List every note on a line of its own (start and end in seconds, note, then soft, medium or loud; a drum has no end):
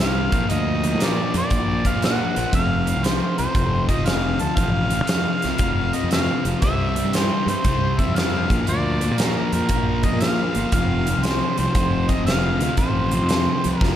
0.00 0.30 C2 medium
0.00 0.30 C3 medium
0.00 0.31 G3 medium
0.00 0.31 C4 medium
0.00 0.52 F5 medium
0.00 snare medium
0.31 0.41 A#1 medium
0.31 0.48 A#2 medium
0.31 0.50 F3 medium
0.31 0.50 A#3 medium
0.31 kick loud
0.31 closed hi-hat medium
0.50 0.94 D2 medium
0.50 0.83 A#2 medium
0.50 0.84 F3 medium
0.50 0.84 A#3 medium
0.50 1.05 D#5 medium
0.50 closed hi-hat medium
0.84 0.99 A#2 medium
0.84 1.01 F3 medium
0.84 1.00 A#3 medium
0.84 closed hi-hat medium
0.93 1.16 A#2 medium
1.00 1.33 A#2 medium
1.00 1.35 F3 medium
1.00 1.35 A#3 loud
1.00 1.36 D5 medium
1.00 snare loud
1.00 closed hi-hat medium
1.34 1.42 F2 medium
1.34 1.50 A#2 medium
1.34 1.51 F3 medium
1.34 1.51 A#3 medium
1.34 1.88 D5 medium
1.34 closed hi-hat medium
1.50 1.83 A#1 medium
1.50 1.83 A#2 medium
1.50 1.85 F3 medium
1.50 1.84 A#3 loud
1.50 kick loud
1.50 closed hi-hat medium
1.84 2.02 A#2 medium
1.84 2.03 F3 medium
1.84 2.03 A#3 medium
1.84 2.03 F5 medium
1.84 kick medium
1.84 closed hi-hat medium
1.96 2.19 A#2 medium
2.02 2.34 A#2 medium
2.02 2.36 F3 medium
2.02 2.35 A#3 medium
2.02 2.51 F#5 loud
2.02 snare medium
2.02 closed hi-hat medium
2.35 2.45 A#1 medium
2.35 2.52 A#2 medium
2.35 2.54 F3 medium
2.35 2.53 A#3 medium
2.35 closed hi-hat medium
2.53 2.93 F1 loud
2.53 2.86 F2 medium
2.53 2.86 C3 medium
2.53 2.87 F3 medium
2.53 3.07 F5 loud
2.53 kick medium
2.53 closed hi-hat medium
2.86 3.03 F2 medium
2.86 3.03 C3 medium
2.86 3.04 F3 medium
2.86 closed hi-hat medium
2.96 3.20 C2 medium
3.03 3.38 F2 medium
3.03 3.38 C3 medium
3.03 3.40 F3 loud
3.03 3.37 C5 medium
3.03 snare loud
3.03 closed hi-hat medium
3.38 3.47 C2 medium
3.38 3.55 F2 medium
3.38 3.55 C3 medium
3.38 3.55 F3 medium
3.38 3.86 C5 medium
3.38 closed hi-hat medium
3.55 3.87 F1 medium
3.55 3.87 F2 medium
3.55 3.88 C3 medium
3.55 3.89 F3 medium
3.55 kick loud
3.55 closed hi-hat medium
3.89 4.05 F2 medium
3.89 4.06 C3 medium
3.89 4.06 F3 medium
3.89 4.07 D#5 medium
3.89 kick medium
3.89 closed hi-hat medium
3.99 4.38 F1 medium
4.05 4.39 F2 medium
4.05 4.39 C3 medium
4.05 4.41 F3 medium
4.05 4.42 F5 loud
4.05 snare loud
4.05 closed hi-hat medium
4.39 4.50 D2 medium
4.39 4.57 F2 medium
4.39 4.58 C3 medium
4.39 4.58 F3 medium
4.39 4.58 A5 medium
4.39 closed hi-hat medium
4.56 5.01 A1 medium
4.56 4.91 F2 medium
4.56 4.92 C3 medium
4.56 4.92 F3 loud
4.56 5.96 F5 loud
4.56 kick loud
4.56 closed hi-hat medium
4.90 5.08 F2 medium
4.90 5.08 C3 medium
4.90 5.09 F3 medium
4.90 closed hi-hat medium
5.01 5.25 F2 medium
5.07 5.42 F2 medium
5.07 5.43 C3 medium
5.07 5.43 F3 loud
5.07 snare loud
5.07 closed hi-hat medium
5.42 5.52 C2 medium
5.42 5.58 F2 medium
5.42 5.59 C3 medium
5.42 5.60 F3 medium
5.42 snare soft
5.42 closed hi-hat medium
5.58 5.91 F1 medium
5.58 5.93 F2 medium
5.58 5.94 C3 loud
5.58 5.94 F3 medium
5.58 kick loud
5.58 closed hi-hat medium
5.93 6.10 F2 medium
5.93 6.11 C3 medium
5.93 6.11 F3 medium
5.93 6.11 D#5 medium
5.93 closed hi-hat medium
6.03 6.27 F2 medium
6.11 6.44 F2 medium
6.11 6.45 C3 medium
6.11 6.46 F3 medium
6.11 6.48 F5 medium
6.11 snare medium
6.11 closed hi-hat medium
6.45 6.53 F1 medium
6.45 6.62 F2 medium
6.45 6.62 C3 medium
6.45 6.63 F3 medium
6.45 closed hi-hat medium
6.62 7.02 C2 loud
6.62 6.95 C3 medium
6.62 6.96 G3 medium
6.62 6.97 C4 medium
6.62 7.17 E5 medium
6.62 kick loud
6.62 closed hi-hat medium
6.96 7.13 C3 medium
6.96 7.14 G3 medium
6.96 7.15 C4 medium
6.96 closed hi-hat medium
7.04 7.29 G2 medium
7.13 7.48 C3 medium
7.13 7.48 G3 medium
7.13 7.50 C4 medium
7.13 7.48 C5 medium
7.13 snare loud
7.13 closed hi-hat medium
7.46 7.55 G2 medium
7.46 7.65 C3 medium
7.46 7.66 G3 medium
7.46 8.01 C5 medium
7.46 closed hi-hat medium
7.51 7.66 C4 medium
7.64 7.97 C2 medium
7.64 7.99 C3 medium
7.64 8.00 G3 medium
7.64 8.00 C4 medium
7.64 kick loud
7.64 closed hi-hat medium
7.99 8.15 C3 medium
7.99 8.15 G3 medium
7.99 8.16 C4 medium
7.99 8.17 E5 medium
7.99 kick medium
7.99 closed hi-hat medium
8.08 8.47 F2 medium
8.16 8.49 C3 medium
8.16 8.49 G3 medium
8.16 8.49 C4 medium
8.16 8.68 F5 medium
8.16 snare loud
8.16 closed hi-hat medium
8.50 8.58 A#1 medium
8.50 8.65 A#2 medium
8.50 8.67 F3 medium
8.50 8.67 A#3 medium
8.50 kick loud
8.50 closed hi-hat medium
8.66 9.11 D2 medium
8.66 9.00 A#2 medium
8.66 9.02 F3 medium
8.66 9.01 A#3 medium
8.66 9.20 D5 medium
8.66 closed hi-hat medium
9.01 9.17 A#2 medium
9.01 9.19 F3 medium
9.01 9.20 A#3 medium
9.01 closed hi-hat medium
9.11 9.35 A#2 medium
9.18 9.53 A#2 medium
9.18 9.55 F3 loud
9.18 9.54 A#3 loud
9.18 9.53 A#4 medium
9.18 snare loud
9.18 closed hi-hat medium
9.53 9.61 F2 medium
9.53 9.70 A#2 medium
9.53 9.70 F3 medium
9.53 9.70 A#3 medium
9.53 10.06 A#4 medium
9.53 closed hi-hat medium
9.69 10.02 A#1 medium
9.69 10.04 A#2 medium
9.69 10.06 F3 medium
9.69 10.06 A#3 loud
9.69 kick loud
9.69 closed hi-hat medium
10.03 10.21 A#2 medium
10.03 10.23 F3 medium
10.03 10.20 D#5 medium
10.03 kick medium
10.03 closed hi-hat medium
10.07 10.23 A#3 medium
10.13 10.37 A#2 medium
10.21 10.55 A#2 medium
10.21 10.56 F3 medium
10.21 10.56 A#3 medium
10.21 10.69 F5 medium
10.21 snare loud
10.21 closed hi-hat medium
10.55 10.64 G1 medium
10.55 10.72 A#2 medium
10.55 10.73 F3 medium
10.55 10.73 A#3 medium
10.55 closed hi-hat medium
10.72 11.13 F1 loud
10.72 11.07 F2 medium
10.72 11.07 C3 medium
10.72 11.08 F3 loud
10.72 11.25 F5 medium
10.72 kick loud
10.72 closed hi-hat medium
11.07 11.25 F2 medium
11.07 11.25 C3 medium
11.07 11.26 F3 medium
11.07 closed hi-hat medium
11.17 11.41 C2 medium
11.23 11.58 F2 medium
11.23 11.58 C3 loud
11.23 11.60 F3 loud
11.23 11.58 C5 medium
11.23 snare loud
11.23 closed hi-hat medium
11.58 11.67 C2 medium
11.58 11.76 F2 medium
11.58 11.76 C3 medium
11.58 11.77 F3 medium
11.58 12.10 C5 medium
11.58 closed hi-hat medium
11.75 12.07 F1 medium
11.75 12.08 F2 medium
11.75 12.09 C3 loud
11.75 12.10 F3 loud
11.75 kick loud
11.75 closed hi-hat medium
12.09 12.26 F2 medium
12.09 12.28 C3 medium
12.09 12.28 F3 medium
12.09 12.25 D#5 medium
12.09 kick medium
12.09 closed hi-hat medium
12.18 12.58 F1 medium
12.26 12.60 F2 medium
12.26 12.60 C3 medium
12.26 12.61 F3 medium
12.26 12.75 F5 medium
12.26 snare medium
12.26 closed hi-hat medium
12.61 12.70 D2 medium
12.61 12.77 F2 medium
12.61 12.78 C3 medium
12.61 12.79 F3 medium
12.61 closed hi-hat medium
12.77 13.22 A1 medium
12.77 13.11 F2 medium
12.77 13.11 C3 medium
12.77 13.12 F3 medium
12.77 13.79 C5 medium
12.77 kick medium
12.77 closed hi-hat medium
13.11 13.29 F2 medium
13.11 13.30 C3 medium
13.11 13.30 F3 medium
13.11 closed hi-hat medium
13.22 13.46 F2 medium
13.29 13.64 F2 medium
13.29 13.65 C3 medium
13.29 13.65 F3 loud
13.29 snare loud
13.29 closed hi-hat medium
13.64 13.73 C2 medium
13.64 13.82 F2 medium
13.64 13.82 C3 medium
13.64 13.82 F3 medium
13.64 closed hi-hat medium
13.79 13.96 F1 medium
13.79 13.96 F2 medium
13.79 13.96 A#4 medium
13.79 kick loud
13.83 13.96 C3 medium
13.83 13.96 F3 medium
13.83 snare medium